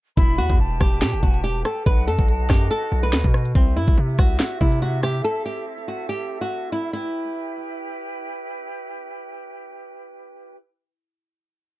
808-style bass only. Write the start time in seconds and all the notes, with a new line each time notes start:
0.17 E1
0.38 E2
0.50 E2
0.60 E1
0.81 E1
1.02 B2
1.13 E1
1.23 E1
1.86 B1
2.07 F#2
2.19 B1
2.50 F#2
2.92 B1
3.13 D#2
3.24 B2
3.55 C2
3.76 G2
3.88 C2
3.98 C3
4.19 C2
4.61 C3